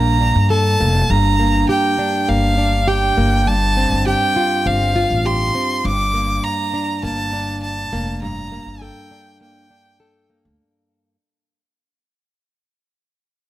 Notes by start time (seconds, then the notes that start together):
Already playing: A#1 G2 A#3 D4 A#5
0.20 D4
0.35 G2
0.50 A4 A5
0.80 F1 A#3
1.10 G1 G2 A#5
1.39 A#3
1.69 G4 G5
1.99 D4
2.29 G1 A#3 F5
2.58 D4
2.88 G4 G5
3.17 G1 A#3
3.47 G2 A5
3.77 C4
3.92 G1
4.06 G4 G5
4.36 F4
4.66 G1 C4 F5
4.96 F4
5.10 A1
5.25 G4 C6
5.55 C4
5.84 G1 G2 D6
6.14 A#3
6.44 A#5
6.74 D4
7.03 G1 A#3 A5
7.33 D4
7.64 A5
7.92 F1 A#3
8.22 G2 A#5
8.52 A#3
8.66 G1
8.82 A4 G5
9.11 D4
9.41 A#3 G5
9.71 D4
10.00 A4
10.30 A#3
10.45 D2